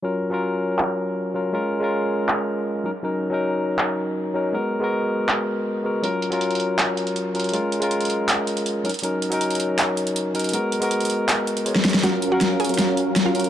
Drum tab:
HH |--------------------------------|--------------------------------|--------------------------------|--------------------------------|
CP |----------------x---------------|----------------x---------------|----------------x---------------|----------------x---------------|
SD |--------------------------------|--------------------------------|--------------------------------|--------------------------------|

HH |x---x-x-x-xxx---x---x-x-x---xxxx|x---x-x-x-xxx---x---x-x-x---xxxx|x---x-x-x-xxx---x---x-x-x---xxxx|x---x-x-x-xxx---x---x-x-x---xxxx|
CP |----------------x---------------|----------------x---------------|----------------x---------------|----------------x---------------|
SD |--------------------------------|--------------------------------|--------------------------------|--------------------------o-o-o-|

HH |x---x---x---xxxxx---x---x---xxx-|
CP |--------------------------------|
SD |o-------o-------o-------o-------|